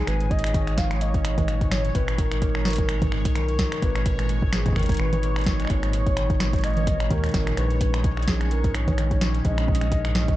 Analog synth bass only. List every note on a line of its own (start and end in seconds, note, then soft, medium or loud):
0.07 1.91 G#1 loud
1.95 3.27 G#1 loud
3.25 3.67 B1 medium
3.82 4.96 G#1 loud
5.00 5.66 G#1 medium
5.70 7.10 G#1 loud
7.11 7.29 D#2 medium
7.34 7.53 G#1 loud
7.57 9.41 A#1 loud
9.45 10.36 A#1 loud